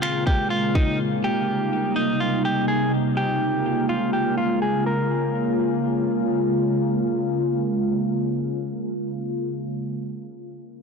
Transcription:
Already playing: ambient pad C#3 G#3 A#3 F4
0.02 clean electric guitar F4, finger snap
0.27 clean electric guitar G4, kick
0.50 clean electric guitar F4
0.75 clean electric guitar D#4, kick
0.99 ambient pad C3 G3 A#3 D#4
1.24 clean electric guitar G4
1.96 clean electric guitar D#4
2.20 clean electric guitar F4
2.45 clean electric guitar G4
2.68 clean electric guitar G#4
2.93 ambient pad C#3 G#3 A#3 F4
3.17 clean electric guitar G4
3.89 clean electric guitar F4
4.13 clean electric guitar G4
4.38 clean electric guitar F4
4.62 clean electric guitar G#4
4.86 ambient pad C#3 G#3 A#3 F4, clean electric guitar A#4

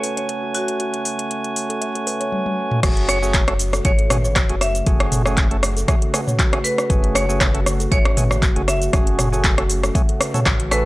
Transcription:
Already playing: analog synth pad C#3 A3 F#4 C#5, tonewheel organ A3 C#4 F#4 G#5, marimba C#5
0.03 kalimba B4, open hi-hat
0.17 kalimba C#5, closed hi-hat
0.29 kalimba F#4, closed hi-hat
0.42 kalimba F#4
0.54 marimba F#4, open hi-hat
0.68 closed hi-hat
0.80 kalimba F#4, closed hi-hat
0.94 closed hi-hat
1.05 open hi-hat
1.19 closed hi-hat
1.31 closed hi-hat
1.44 closed hi-hat
1.56 open hi-hat
1.70 kalimba A4, closed hi-hat
1.81 kalimba E5, closed hi-hat
1.95 kalimba A4, closed hi-hat
2.07 kalimba B4, open hi-hat
2.20 kalimba C#5, closed hi-hat
2.32 high tom
2.46 high tom
2.71 mid tom
2.83 analog synth bass F#1, analog synth pad C#3 A3 F#4, tonewheel organ A3 C#4 F#4 G#4, kalimba F#4, kick, cross-stick, closed hi-hat, crash, shaker
2.97 closed hi-hat
3.09 marimba C#5, cross-stick, open hi-hat, shaker
3.22 tonewheel organ A3 C#4 F#4 G#4, shaker
3.34 kick, clap, closed hi-hat, shaker
3.48 tonewheel organ A3 C#4 F#4 A4, cross-stick, closed hi-hat
3.59 open hi-hat, shaker
3.73 kalimba A4, cross-stick, closed hi-hat, shaker
3.85 analog synth bass G#1, tonewheel organ A3 C#4 F#4 G#4, marimba C#5, kalimba E5, kick, closed hi-hat, shaker
3.99 kalimba A4, closed hi-hat
4.10 tonewheel organ A3 C#4 F#4 G#4, kalimba B4, cross-stick, mid tom, open hi-hat, shaker
4.24 kalimba C#5, shaker
4.36 kalimba F#4, kick, cross-stick, clap, closed hi-hat, shaker
4.49 analog synth bass F#1, tonewheel organ A3 C#4 F#4 G#4, kalimba F#4, closed hi-hat
4.61 marimba E5, cross-stick, open hi-hat, shaker
4.75 closed hi-hat, shaker
4.87 analog synth bass F#1, tonewheel organ A3 C#4 F#4 G#4, kalimba F#4, kick, closed hi-hat, shaker
5.00 cross-stick, closed hi-hat
5.12 mid tom, open hi-hat, shaker
5.26 tonewheel organ A3 C#4 F#4 G#4, cross-stick, shaker
5.37 kick, clap, closed hi-hat, shaker
5.51 tonewheel organ A3 C#4 F#4 A4, closed hi-hat
5.63 cross-stick, open hi-hat, shaker
5.77 kalimba A4, closed hi-hat, shaker
5.88 tonewheel organ A3 C#4 F#4 G#4, kalimba E5, kick, cross-stick, closed hi-hat, shaker
6.02 kalimba A4, closed hi-hat
6.14 tonewheel organ A3 C#4 F#4 G#4, kalimba B4, cross-stick, open hi-hat, shaker
6.27 kalimba C#5, mid tom, shaker
6.39 kalimba F#4, kick, clap, closed hi-hat, shaker
6.53 tonewheel organ A3 C#4 F#4 G#4, kalimba F#4, cross-stick, closed hi-hat
6.64 marimba B4, open hi-hat, shaker
6.78 cross-stick, closed hi-hat, shaker
6.90 analog synth bass F#1, tonewheel organ A3 C#4 F#4 G#4, kalimba F#4, kick, closed hi-hat, shaker
7.04 closed hi-hat
7.15 marimba C#5, cross-stick, open hi-hat, shaker
7.29 tonewheel organ A3 C#4 F#4 G#4, shaker
7.41 kick, cross-stick, clap, closed hi-hat, shaker
7.54 tonewheel organ A3 C#4 F#4 A4, closed hi-hat
7.66 cross-stick, open hi-hat, shaker
7.80 kalimba A4, closed hi-hat, shaker
7.91 analog synth bass G#1, tonewheel organ A3 C#4 F#4 G#4, marimba C#5, kalimba E5, kick, closed hi-hat, shaker
8.05 kalimba A4, cross-stick, closed hi-hat
8.17 tonewheel organ A3 C#4 F#4 G#4, kalimba B4, mid tom, open hi-hat, shaker
8.31 kalimba C#5, cross-stick, shaker
8.42 kalimba F#4, kick, clap, closed hi-hat, shaker
8.56 analog synth bass F#1, tonewheel organ A3 C#4 F#4 G#4, kalimba F#4, closed hi-hat
8.68 marimba E5, cross-stick, open hi-hat, shaker
8.82 closed hi-hat, shaker
8.93 analog synth bass F#1, tonewheel organ A3 C#4 F#4 G#4, kick, cross-stick, closed hi-hat, shaker
9.07 closed hi-hat
9.19 cross-stick, mid tom, open hi-hat, shaker
9.32 tonewheel organ A3 C#4 F#4 G#4, shaker
9.44 kick, clap, closed hi-hat, shaker
9.58 tonewheel organ A3 C#4 F#4 A4, cross-stick, closed hi-hat
9.70 open hi-hat, shaker
9.83 kalimba A4, cross-stick, closed hi-hat, shaker
9.95 tonewheel organ A3 C#4 F#4 G#4, kalimba E5, kick, closed hi-hat, shaker
10.09 kalimba A4, closed hi-hat
10.21 kalimba B4, cross-stick, open hi-hat, shaker
10.34 tonewheel organ A3 C#4 F#4 A4, kalimba C#5, closed hi-hat, mid tom, shaker
10.46 analog synth bass A1, kalimba F#4, kick, cross-stick, clap, closed hi-hat, shaker
10.60 kalimba F#4, closed hi-hat
10.71 tonewheel organ A3 C#4 F#4 A4, marimba B4, cross-stick, open hi-hat, shaker

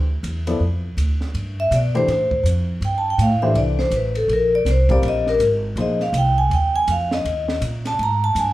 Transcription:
Already playing: upright bass D2
0.23 upright bass E2, hi-hat pedal, ride
0.47 grand piano F3 B3 E4 A4 D5, ride
0.60 upright bass F2
0.97 upright bass D2, hi-hat pedal, ride
1.21 snare
1.34 upright bass G2, ride
1.60 vibraphone E5
1.71 upright bass B2, vibraphone D5, hi-hat pedal, ride
1.94 grand piano E3 A3 D4 G4 C5, vibraphone C5, ride
2.08 upright bass A2, snare, ride
2.31 kick
2.43 upright bass F2, hi-hat pedal, ride
2.81 upright bass G2, ride
2.85 vibraphone G5
2.98 vibraphone A5
3.10 vibraphone G5
3.18 upright bass A2, vibraphone F5, hi-hat pedal, ride
3.42 grand piano E3 A3 D4 G4 C5, vibraphone E5
3.54 upright bass C2, vibraphone D5, ride
3.79 vibraphone C5, snare
3.90 upright bass A1, hi-hat pedal, ride
3.96 vibraphone B4
4.15 vibraphone A4, ride
4.28 upright bass A#1, ride
4.33 vibraphone A#4
4.55 vibraphone D5
4.65 upright bass C2, snare, hi-hat pedal, ride
4.71 vibraphone C5
4.89 grand piano G3 C4 F4 A#4 D5, vibraphone D5, kick, ride
5.02 upright bass A#1, ride
5.08 vibraphone D#5
5.26 vibraphone A#4, snare
5.39 upright bass G#1, hi-hat pedal, ride
5.76 upright bass A#1, grand piano F3 A#3 D#4 G#4 C5, ride
5.81 vibraphone D#5
6.00 vibraphone F5, snare
6.13 upright bass C2, hi-hat pedal, ride
6.18 vibraphone G5
6.38 vibraphone G#5
6.50 upright bass D#2, vibraphone G5, ride
6.76 vibraphone G#5
6.88 upright bass F2, vibraphone F5, hi-hat pedal, ride
7.11 vibraphone D#5, snare
7.25 upright bass D#2, ride
7.48 snare
7.61 upright bass A#2, hi-hat pedal, ride
7.85 vibraphone A5, snare, ride
7.99 upright bass G#2, ride
8.03 vibraphone A#5
8.24 vibraphone A5
8.35 upright bass G2, vibraphone G#5, hi-hat pedal, ride

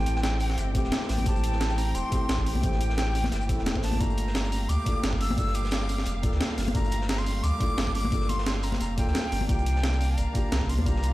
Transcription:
Already playing: sub bass A1, felt piano A3 C4 E4 G4, string section C4 G4 G5, flute G5
0.06 closed hi-hat
0.16 snare
0.23 flute G5, snare, closed hi-hat
0.40 closed hi-hat, open hi-hat
0.50 snare
0.58 sub bass G1, closed hi-hat
0.72 felt piano A3 C4 E4, kick, closed hi-hat
0.77 felt piano G4
0.84 sub bass E1, snare
0.92 snare, closed hi-hat, high conga
1.02 snare
1.09 sub bass A1, snare, closed hi-hat, open hi-hat
1.18 closed hi-hat, high conga
1.24 sub bass A1, felt piano A3 C4 E4, flute A5, kick, closed hi-hat
1.28 felt piano G4
1.36 closed hi-hat
1.44 closed hi-hat
1.52 snare
1.60 snare, closed hi-hat
1.70 closed hi-hat
1.78 flute A#5, closed hi-hat, open hi-hat
1.95 sub bass E1, flute C6, closed hi-hat
2.10 felt piano A3 C4 E4, kick, closed hi-hat
2.14 felt piano G4
2.29 sub bass A1, snare, closed hi-hat
2.38 kick, snare
2.46 closed hi-hat, open hi-hat
2.55 sub bass C2, high conga
2.61 sub bass A1, felt piano A3 C4 E4, flute G5, kick, closed hi-hat
2.66 felt piano G4
2.72 snare
2.81 closed hi-hat
2.90 snare
2.98 snare, closed hi-hat
3.15 closed hi-hat, open hi-hat
3.24 snare, high conga
3.32 sub bass G1, snare, closed hi-hat
3.41 closed hi-hat
3.48 felt piano A3 C4 E4 A4, kick, closed hi-hat
3.59 sub bass E1, snare
3.66 snare, closed hi-hat, high conga
3.74 sub bass A1, felt piano A3 C4 E4 C5, kick, closed hi-hat
3.83 flute A5, snare, closed hi-hat, open hi-hat
3.93 closed hi-hat, high conga
3.98 sub bass G1, string section G3 F5, felt piano A#3 D4 F4, flute A#5, kick, closed hi-hat
4.03 felt piano A3
4.10 closed hi-hat
4.17 closed hi-hat
4.27 snare
4.35 snare, closed hi-hat
4.45 closed hi-hat
4.52 closed hi-hat, open hi-hat
4.69 sub bass D2, flute D6, closed hi-hat
4.84 felt piano A#3 D4 F4, kick, closed hi-hat
4.88 felt piano A4
5.04 sub bass G1, snare, closed hi-hat
5.13 kick, snare
5.21 flute E6, closed hi-hat, open hi-hat
5.30 sub bass A#1, high conga
5.36 sub bass G1, felt piano A#3 D4 F4, flute E6, kick, closed hi-hat
5.40 felt piano A4
5.47 snare
5.54 flute D6, closed hi-hat
5.64 snare
5.71 snare, closed hi-hat
5.89 closed hi-hat, open hi-hat
5.98 snare
6.06 sub bass F1, closed hi-hat
6.21 felt piano A#3 D4 F4, kick, closed hi-hat
6.25 felt piano A4
6.32 sub bass D2, snare
6.41 snare, closed hi-hat, high conga
6.50 snare
6.58 sub bass G1, snare, closed hi-hat, open hi-hat
6.67 closed hi-hat, high conga
6.73 sub bass G1, felt piano A#3 D4 F4, flute A#5, kick, closed hi-hat
6.77 felt piano A3
6.84 closed hi-hat
6.91 closed hi-hat
7.01 snare
7.09 flute A#5, snare, closed hi-hat
7.18 flute C6, closed hi-hat
7.26 closed hi-hat, open hi-hat
7.43 sub bass D2, flute D6, closed hi-hat
7.58 felt piano A#3 D4 F4, kick, closed hi-hat
7.63 felt piano A4
7.78 sub bass G1, snare, closed hi-hat
7.87 kick, snare
7.94 flute D6, closed hi-hat, open hi-hat
8.04 sub bass A#1, high conga
8.10 sub bass G1, felt piano A#3 D4 F4, kick, closed hi-hat
8.14 felt piano A4
8.21 snare
8.29 flute C6, closed hi-hat, high conga
8.39 snare
8.46 snare, closed hi-hat
8.63 flute A#5, closed hi-hat, open hi-hat
8.72 snare, high conga
8.81 sub bass F1, flute A#5, closed hi-hat
8.96 felt piano A#3 D4 F4, flute G5, kick, closed hi-hat
9.00 felt piano A4
9.07 sub bass D2, snare
9.15 snare, closed hi-hat, high conga
9.32 sub bass G1, closed hi-hat, open hi-hat
9.41 high conga
9.47 sub bass C2, felt piano A#3 D4 F4, string section D4 A#4 F5, flute G5, kick, closed hi-hat
9.51 felt piano G4
9.59 closed hi-hat
9.66 closed hi-hat
9.76 snare
9.83 snare, closed hi-hat
9.93 closed hi-hat
10.01 closed hi-hat, open hi-hat
10.18 sub bass G1, flute A#5, closed hi-hat
10.33 felt piano A#3 D4 F4, kick, closed hi-hat
10.37 felt piano G4
10.52 sub bass C2, snare, closed hi-hat
10.61 kick, snare
10.69 flute C6, closed hi-hat, open hi-hat
10.78 sub bass F2, high conga
10.84 sub bass C2, felt piano A#3 D4 F4, flute A#5, kick, closed hi-hat
10.89 felt piano G4
10.96 snare
11.03 closed hi-hat

